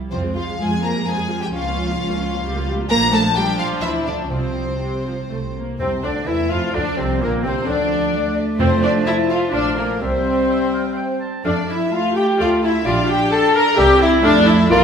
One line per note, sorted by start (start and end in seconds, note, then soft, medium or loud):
0.12 0.54 F2 medium
0.12 0.20 C3 medium
0.12 0.23 F3 soft
0.12 0.34 C4 medium
0.12 0.23 F4 soft
0.12 0.20 C5 medium
0.24 0.36 G#3 soft
0.24 0.36 G#4 soft
0.35 0.58 F3 medium
0.35 0.48 F3 soft
0.35 0.43 F4 medium
0.35 0.48 F4 soft
0.35 0.60 F5 medium
0.48 0.60 G#3 soft
0.48 0.60 G#4 soft
0.59 1.01 F2 medium
0.59 0.70 F3 soft
0.59 0.83 G#3 medium
0.59 0.70 F4 soft
0.59 0.82 G#4 medium
0.59 0.83 G#5 medium
0.71 0.83 G#3 soft
0.71 0.83 G#4 soft
0.82 0.94 F3 soft
0.82 1.05 A#3 medium
0.82 0.95 F4 soft
0.82 1.06 A#4 medium
0.82 1.07 A#5 medium
0.94 1.06 G#3 soft
0.94 1.06 G#4 soft
1.05 1.47 F2 medium
1.05 1.17 F3 soft
1.05 1.41 G#3 medium
1.05 1.16 F4 soft
1.05 1.41 G#4 medium
1.05 1.41 G#5 medium
1.17 1.29 G#3 soft
1.17 1.29 G#4 soft
1.29 1.41 F3 soft
1.29 1.41 F4 soft
1.40 1.52 G3 medium
1.40 1.53 G#3 soft
1.40 1.45 G4 medium
1.40 1.53 G#4 soft
1.40 1.47 G5 medium
1.52 1.94 C#2 medium
1.52 2.65 F3 medium
1.52 1.63 C#4 soft
1.52 2.65 F4 medium
1.52 1.63 F4 medium
1.52 2.66 F5 medium
1.64 1.76 A#3 soft
1.64 1.74 C#4 soft
1.75 1.87 C#4 medium
1.75 1.87 F4 medium
1.88 1.99 A#3 soft
1.88 1.98 C#4 soft
1.99 2.39 C#2 medium
1.99 2.10 C#4 medium
1.99 2.10 F4 medium
2.10 2.22 A#3 soft
2.10 2.20 C#4 soft
2.21 2.32 C#4 medium
2.21 2.33 F4 medium
2.33 2.45 A#3 medium
2.33 2.45 C#4 medium
2.45 2.85 C#2 medium
2.45 2.55 G3 medium
2.45 2.55 G4 medium
2.56 2.67 A#3 medium
2.56 2.67 F4 medium
2.67 2.79 G3 medium
2.67 2.79 G4 medium
2.79 2.90 A#3 medium
2.79 2.90 F4 medium
2.89 3.78 A#1 medium
2.89 4.28 F3 medium
2.89 3.11 A#3 medium
2.89 4.28 D4 medium
2.89 2.97 A#4 medium
2.89 3.11 A#5 loud
3.12 3.20 A3 medium
3.12 3.20 A4 medium
3.12 3.36 A5 loud
3.35 3.58 G3 medium
3.35 3.43 G4 medium
3.35 3.60 G5 loud
3.59 3.83 F3 medium
3.59 3.82 F4 medium
3.59 3.67 F5 medium
3.82 4.31 D2 medium
3.82 3.90 E3 medium
3.82 4.07 E4 medium
3.82 3.90 E5 medium
4.06 4.15 D3 medium
4.06 4.31 D4 medium
4.06 4.15 D5 medium
4.31 5.28 C2 medium
4.31 5.02 C3 medium
4.31 5.53 C3 medium
4.31 4.75 F3 soft
4.31 4.75 C4 soft
4.31 5.56 C4 medium
4.31 5.53 C5 medium
4.81 5.04 C3 soft
5.06 5.14 F3 medium
5.30 5.59 C2 soft
5.30 5.38 A3 medium
5.56 5.80 A#3 soft
5.79 6.02 C2 medium
5.79 6.47 F2 medium
5.79 6.05 C3 medium
5.79 5.90 C4 medium
5.79 6.02 C4 medium
5.79 5.89 C4 medium
5.79 5.85 C5 medium
5.79 6.02 C5 soft
6.02 6.28 D2 medium
6.02 6.29 D3 medium
6.02 6.28 D4 medium
6.02 6.30 D4 soft
6.02 6.12 D4 medium
6.02 6.15 D4 soft
6.02 6.12 D4 medium
6.02 6.09 D5 soft
6.02 6.28 D5 medium
6.27 6.52 E2 medium
6.27 6.52 E3 medium
6.27 6.72 A3 medium
6.27 6.51 E4 medium
6.27 6.38 E4 medium
6.27 6.49 E4 medium
6.27 6.36 E4 medium
6.27 6.50 E4 medium
6.27 6.51 E5 medium
6.27 6.52 E5 medium
6.50 6.59 F2 medium
6.50 6.74 F3 medium
6.50 6.75 F4 medium
6.50 6.76 F4 medium
6.50 6.74 F4 medium
6.50 6.75 F4 medium
6.50 6.60 F4 soft
6.50 6.76 F5 medium
6.50 6.58 F5 medium
6.73 6.84 D2 medium
6.73 6.85 D3 medium
6.73 7.21 F3 medium
6.73 6.98 D4 medium
6.73 6.99 D4 medium
6.73 6.97 D4 medium
6.73 6.99 D4 medium
6.73 6.80 D5 medium
6.73 6.98 D5 medium
6.97 7.22 C2 medium
6.97 7.21 C3 medium
6.97 7.20 C4 medium
6.97 7.23 C4 medium
6.97 7.22 C4 medium
6.97 7.10 C4 soft
6.97 7.23 C4 medium
6.97 7.21 C5 medium
6.97 7.22 C5 medium
7.20 7.45 A#1 medium
7.20 7.46 A#2 medium
7.20 7.68 D3 medium
7.20 7.46 A#3 medium
7.20 7.45 A#3 medium
7.20 7.42 A#3 medium
7.20 7.45 A#3 medium
7.20 7.32 A#3 medium
7.20 7.44 A#4 medium
7.20 7.31 A#4 medium
7.43 7.68 C2 medium
7.43 7.66 C3 medium
7.43 7.54 C4 medium
7.43 7.68 C4 medium
7.43 7.70 C4 medium
7.43 7.68 C4 medium
7.43 7.54 C4 medium
7.43 7.68 C5 medium
7.66 8.36 D2 medium
7.66 8.35 D3 medium
7.66 8.13 F3 medium
7.66 8.35 D4 medium
7.66 8.37 D4 medium
7.66 8.36 D4 medium
7.66 8.36 D5 medium
7.66 8.38 D5 medium
8.13 10.01 A3 medium
8.59 9.26 F2 medium
8.59 8.97 F2 medium
8.59 9.49 F3 medium
8.59 8.70 C4 medium
8.59 8.68 C4 medium
8.59 8.82 C4 medium
8.59 8.81 C5 medium
8.59 8.82 C5 medium
8.59 9.49 A5 medium
8.83 8.91 D4 medium
8.83 9.06 D4 medium
8.83 9.07 D4 medium
8.83 8.91 D5 medium
8.83 9.07 D5 medium
9.05 9.14 E4 medium
9.05 9.17 E4 medium
9.05 9.31 E4 medium
9.05 9.41 A4 medium
9.05 9.15 E5 medium
9.05 9.30 E5 medium
9.29 9.54 F4 medium
9.29 9.53 F4 medium
9.29 9.54 F4 medium
9.29 9.38 F5 medium
9.29 9.37 F5 medium
9.53 9.91 A#1 medium
9.53 10.03 F3 medium
9.53 9.77 D4 medium
9.53 9.80 D4 medium
9.53 9.78 D4 medium
9.53 9.89 D5 medium
9.53 9.77 D5 medium
9.53 10.00 F5 medium
9.77 9.86 A#3 medium
9.77 10.03 A#3 medium
9.77 9.89 A#3 medium
9.77 9.83 A#4 medium
9.77 10.01 A#4 medium
10.01 10.40 C2 medium
10.01 11.21 G3 medium
10.01 11.21 C4 medium
10.01 11.19 C4 medium
10.01 11.20 C4 medium
10.01 11.19 C5 medium
10.01 11.22 C5 medium
10.01 10.44 E5 soft
10.50 10.85 E5 medium
10.50 10.72 E5 medium
10.73 10.84 F5 medium
10.96 11.33 E5 medium
10.96 11.08 G5 medium
11.20 11.44 A5 medium
11.45 11.83 F2 medium
11.45 11.90 F3 medium
11.45 11.62 A3 medium
11.45 11.67 D4 medium
11.45 11.53 D4 medium
11.45 11.69 D4 medium
11.45 11.67 D5 medium
11.45 11.52 D5 medium
11.45 11.62 F5 medium
11.69 11.92 E4 medium
11.69 11.80 E4 soft
11.69 11.94 E4 medium
11.69 11.93 E5 medium
11.92 12.39 A3 medium
11.92 12.16 F4 medium
11.92 12.18 F4 medium
11.92 12.16 F4 medium
11.92 12.16 F5 medium
11.92 12.17 F5 medium
11.92 12.28 A5 medium
12.15 12.40 G4 medium
12.15 12.39 G5 medium
12.15 12.26 G5 medium
12.39 12.77 D2 medium
12.39 12.85 A3 medium
12.39 12.56 A3 medium
12.39 12.63 F4 medium
12.39 12.66 F4 medium
12.39 12.64 F4 medium
12.39 12.55 D5 medium
12.39 12.63 F5 medium
12.39 12.49 F5 medium
12.39 12.75 A5 medium
12.62 12.73 E4 medium
12.62 12.71 E4 medium
12.62 12.87 E4 medium
12.62 12.86 E5 medium
12.62 12.87 E5 medium
12.85 13.23 A#1 medium
12.85 13.02 G3 medium
12.85 13.76 D4 medium
12.85 13.09 F4 medium
12.85 12.97 F4 medium
12.85 13.02 D5 medium
12.85 12.91 F5 medium
12.85 13.10 F5 medium
13.08 13.32 G4 loud
13.08 13.32 G4 medium
13.08 13.20 G4 medium
13.08 13.32 G5 medium
13.08 13.31 G5 medium
13.31 13.54 A4 loud
13.31 13.55 A4 loud
13.31 13.43 A4 medium
13.31 13.67 G5 medium
13.31 13.55 A5 medium
13.54 13.78 A#4 loud
13.54 13.66 A#4 medium
13.54 13.78 A#4 medium
13.54 13.77 A#5 medium
13.77 14.15 C2 medium
13.77 13.94 G3 medium
13.77 14.25 C4 medium
13.77 14.01 G4 medium
13.77 14.01 G4 loud
13.77 14.02 G4 loud
13.77 13.93 E5 medium
13.77 14.12 E5 medium
13.77 14.01 G5 loud
13.77 14.01 G5 medium
14.00 14.24 E4 loud
14.00 14.24 E4 medium
14.00 14.25 E4 medium
14.00 14.24 E5 medium
14.00 14.10 E5 medium
14.24 14.68 F2 medium
14.24 14.70 A3 medium
14.24 14.41 A3 medium
14.24 14.48 D4 loud
14.24 14.36 D4 medium
14.24 14.69 A4 medium
14.24 14.48 D5 loud
14.24 14.41 F5 medium
14.47 14.71 E4 medium
14.47 14.71 E4 loud
14.47 14.59 E4 medium
14.47 14.71 E5 medium
14.47 14.54 E5 medium
14.70 14.84 A#1 medium
14.70 14.84 G3 loud
14.70 14.84 A#3 medium
14.70 14.84 F4 loud
14.70 14.84 A#4 medium
14.70 14.84 D5 medium
14.70 14.84 F5 loud
14.70 14.80 F5 medium